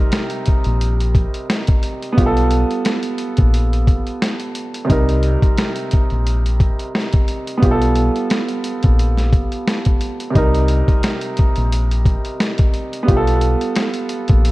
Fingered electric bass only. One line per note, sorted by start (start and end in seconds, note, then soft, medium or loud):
0.66 1.25 A#1 medium
2.18 2.63 B1 medium
3.39 3.97 A#1 medium
4.90 5.36 C2 loud
6.12 6.70 A#1 medium
7.63 8.08 B1 loud
8.84 9.43 A#1 medium
10.36 10.81 C2 loud
11.57 12.16 A#1 medium
13.09 13.54 B1 loud
14.30 14.52 A#1 medium